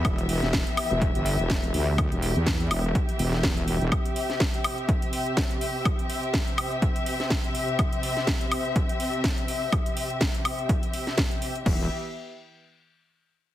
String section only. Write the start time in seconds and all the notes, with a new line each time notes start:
Already playing: E3 B3 G4 E5
3.92 C3 C4 E5
11.66 E3 B3 G4 E5